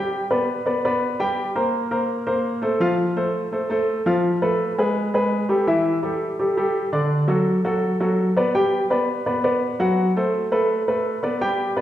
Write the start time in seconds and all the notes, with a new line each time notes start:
Already playing: G3 G4 G5
0.31 B3 B4 D5
0.66 B3 B4 D5
0.85 B3 B4 D5
1.20 G3 G4 G5
1.55 A#3 A#4 C5
1.91 A#3 A#4 C5
2.27 A#3 A#4 C5
2.62 A3 A4 C5
2.80 F3 F4 F5
3.16 A3 A4 C5
3.52 A3 A4 C5
3.70 A3 A4 C5
4.06 F3 F4 F5
4.42 A3 A4 B4
4.78 G#3 G#4 B4
5.14 G#3 G#4 B4
5.49 G3 G4 A4
5.67 E3 E4 E5
6.03 G3 G4 A4
6.39 G3 G4 A4
6.57 G3 G4 A4
6.92 D3 D4 D5
7.28 F#3 F#4 A4
7.65 F#3 F#4 A4
8.00 F#3 F#4 A4
8.37 B3 B4 D5
8.55 G3 G4 G5
8.90 B3 B4 D5
9.26 B3 B4 D5
9.44 B3 B4 D5
9.80 F#3 F#4 F#5
10.16 A3 A4 C5
10.52 A3 A4 B4
10.88 A3 A4 B4
11.23 B3 B4 D5
11.41 G3 G4 G5
11.76 B3 B4 D5